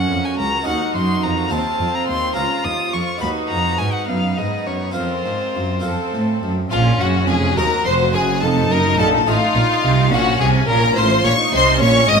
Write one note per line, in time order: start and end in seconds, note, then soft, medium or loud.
0.00 0.65 C#4 medium
0.00 0.63 F#4 soft
0.00 0.66 F#4 medium
0.00 0.64 A#4 soft
0.00 0.66 A#4 soft
0.00 0.26 F#5 medium
0.10 0.18 F2 medium
0.10 0.36 F2 soft
0.25 0.39 G#5 medium
0.38 0.66 C#2 soft
0.38 0.64 C#2 soft
0.38 0.67 A#5 medium
0.63 1.47 D#4 soft
0.63 1.52 D#4 medium
0.63 1.48 F#4 soft
0.63 1.49 A#4 soft
0.67 0.75 D#2 medium
0.67 0.92 D#2 soft
0.67 1.50 F#4 medium
0.67 1.50 A#4 medium
0.67 0.95 F#5 medium
0.95 1.23 F#2 medium
0.95 1.21 F#2 soft
0.95 1.25 C6 medium
1.24 1.51 F2 medium
1.24 1.49 F2 soft
1.24 1.53 A#5 medium
1.48 1.59 D#2 medium
1.48 2.32 C4 soft
1.48 2.34 C4 medium
1.48 2.33 F4 soft
1.48 2.36 F4 medium
1.48 2.33 C5 soft
1.48 3.21 C5 medium
1.48 1.96 A5 medium
1.53 1.78 D#2 soft
1.80 1.88 F2 medium
1.80 2.06 F2 soft
1.95 2.07 A#5 medium
2.08 2.36 D#2 medium
2.08 2.34 D#2 soft
2.08 2.36 C6 medium
2.33 2.44 C#2 medium
2.33 3.17 A#3 soft
2.33 3.18 F4 soft
2.33 3.22 F4 medium
2.33 3.20 F4 soft
2.33 3.19 C#5 soft
2.33 2.66 A#5 medium
2.38 2.63 C#2 soft
2.65 2.73 D#2 medium
2.65 2.90 D#2 soft
2.65 2.95 D#6 medium
2.93 3.01 F2 medium
2.93 3.19 F2 soft
2.93 3.21 C#6 medium
3.18 4.90 D#4 soft
3.18 4.06 D#4 medium
3.18 4.91 F#4 soft
3.18 4.08 F#4 medium
3.18 4.91 B4 soft
3.18 3.29 B5 medium
3.22 3.30 D#2 medium
3.22 3.48 D#2 soft
3.22 4.93 B4 medium
3.49 3.76 F2 soft
3.49 3.79 F2 medium
3.49 3.80 A#5 medium
3.78 4.06 G#2 soft
3.78 3.88 G#2 soft
3.78 3.95 G#5 medium
3.93 4.07 F#5 medium
4.07 4.37 F#2 medium
4.07 4.35 F#2 soft
4.07 4.96 B3 soft
4.07 4.95 D#4 soft
4.07 4.39 F5 medium
4.37 4.45 G#2 medium
4.37 4.64 G#2 soft
4.37 4.69 D#5 medium
4.67 4.95 F#2 soft
4.67 4.93 F#2 soft
4.67 4.95 C#5 medium
4.91 5.24 F2 medium
4.91 5.22 C4 soft
4.91 5.80 F4 soft
4.91 5.80 A#4 soft
4.96 5.22 F2 soft
4.96 5.82 C4 soft
4.96 5.82 F4 soft
4.96 5.85 A#4 soft
4.96 6.39 C5 medium
5.25 5.33 G#2 soft
5.25 5.52 G#2 soft
5.55 5.83 F#2 soft
5.55 5.81 F#2 soft
5.80 5.92 F2 medium
5.80 6.39 C4 soft
5.80 6.67 F4 soft
5.80 6.68 A4 soft
5.84 6.10 F2 soft
5.84 6.50 C4 soft
5.84 6.51 A4 soft
6.13 6.40 A2 soft
6.13 6.42 A2 medium
6.43 6.71 F#2 medium
6.43 6.69 F#2 soft
6.71 6.98 A#1 medium
6.71 6.97 A#2 medium
6.71 6.98 A#2 medium
6.71 7.53 C#4 soft
6.71 7.53 C#4 medium
6.71 6.79 F4 medium
6.71 7.02 F4 medium
6.71 7.53 F4 soft
6.71 6.79 F5 medium
7.00 7.28 F#1 medium
7.00 7.26 F#2 medium
7.00 7.28 F#2 medium
7.00 7.28 F#4 medium
7.00 7.29 F#4 medium
7.00 7.08 F#5 medium
7.28 7.57 F1 medium
7.28 7.54 F2 medium
7.28 7.57 F2 medium
7.28 7.57 G#4 medium
7.28 7.59 G#4 medium
7.28 7.36 G#5 medium
7.57 7.65 D#2 medium
7.57 7.83 D#2 medium
7.57 8.38 C4 soft
7.57 8.38 D#4 medium
7.57 8.41 F#4 medium
7.57 8.38 F#4 soft
7.57 7.65 A#4 medium
7.57 7.89 A#4 medium
7.57 7.85 A#5 medium
7.85 8.13 F1 medium
7.85 8.13 F2 medium
7.85 8.11 F2 medium
7.85 8.13 C5 medium
7.85 8.16 C5 medium
7.85 7.93 C6 medium
8.13 8.42 F#1 medium
8.13 8.42 F#2 medium
8.13 8.39 F#2 medium
8.13 8.22 G#4 medium
8.13 8.45 G#4 medium
8.13 8.41 G#5 medium
8.41 8.70 F1 medium
8.41 8.67 F2 medium
8.41 8.70 F2 medium
8.41 9.25 D#4 medium
8.41 8.51 A4 medium
8.41 8.73 A4 medium
8.41 8.70 A5 medium
8.70 8.98 F#1 medium
8.70 8.98 F#2 medium
8.70 8.96 F#2 medium
8.70 8.79 A#4 medium
8.70 8.99 A#4 medium
8.70 8.99 A#5 loud
8.98 9.27 A#1 medium
8.98 9.26 A#2 medium
8.98 9.24 A#2 medium
8.98 9.26 A4 medium
8.98 9.09 A4 medium
8.98 9.07 A5 medium
9.26 9.35 A1 medium
9.26 9.34 A2 medium
9.26 9.52 A2 medium
9.26 9.47 A3 soft
9.26 10.10 D#4 medium
9.26 9.88 D#4 medium
9.26 9.88 F4 medium
9.26 10.13 F4 medium
9.26 10.11 F4 medium
9.26 10.11 F5 loud
9.55 9.64 A#1 medium
9.55 9.63 A#2 medium
9.55 9.81 A#2 medium
9.83 10.11 C2 medium
9.83 10.09 C3 medium
9.83 10.11 C3 medium
10.12 10.40 A#1 medium
10.12 10.40 A#2 medium
10.12 10.37 A#2 medium
10.12 10.96 C#4 medium
10.12 10.93 C#4 soft
10.12 10.93 F4 soft
10.12 10.39 F#4 medium
10.12 10.40 F#4 medium
10.12 10.41 F#5 loud
10.39 10.68 C2 medium
10.39 10.65 C3 medium
10.39 10.67 C3 medium
10.39 10.48 G#4 medium
10.39 10.69 G#4 medium
10.39 10.69 G#5 medium
10.67 10.95 A#1 medium
10.67 10.93 A#2 medium
10.67 10.96 A#2 medium
10.67 10.95 A#4 loud
10.67 10.96 A#4 medium
10.67 10.96 A#5 loud
10.96 11.24 A1 medium
10.96 11.24 A2 medium
10.96 11.21 A2 medium
10.96 11.77 C4 medium
10.96 11.38 F4 medium
10.96 11.77 F4 medium
10.96 11.23 C5 medium
10.96 11.24 C5 medium
10.96 11.25 C6 loud
11.24 11.32 A#1 medium
11.24 11.32 A#2 medium
11.24 11.50 A#2 medium
11.24 11.32 C#5 medium
11.24 11.33 C#5 medium
11.24 11.53 C#6 loud
11.38 11.79 D#4 medium
11.52 11.80 C2 medium
11.52 11.77 C3 medium
11.52 11.80 C3 medium
11.52 11.80 C5 medium
11.52 11.82 C5 medium
11.52 11.81 C6 loud
11.80 12.09 A#1 medium
11.80 12.05 A#2 medium
11.80 12.08 A#2 medium
11.80 12.20 C#4 medium
11.80 12.08 C#5 medium
11.80 12.10 C#5 loud
11.80 12.08 C#6 loud
12.08 12.20 G#1 medium
12.08 12.20 G#2 medium
12.08 12.20 D#5 medium
12.08 12.20 D#6 loud